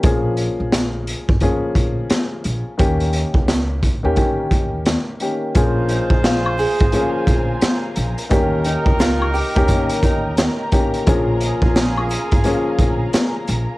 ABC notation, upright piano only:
X:1
M:4/4
L:1/16
Q:"Swing 16ths" 1/4=87
K:Bbdor
V:1 name="Upright piano"
[F,B,DA]6- [F,B,DA] z [F,B,DA]6- [F,B,DA] z | [E,B,DG]6 z [E,B,DG] [E,B,DG]6 [E,B,DG]2 | [F,B,DA]6- [F,B,DA] z [F,B,DA]6- [F,B,DA] z | [E,B,DG]6 z [E,B,DG] [E,B,DG]6 [E,B,DG]2 |
[F,B,DA]6- [F,B,DA] z [F,B,DA]6- [F,B,DA] z |]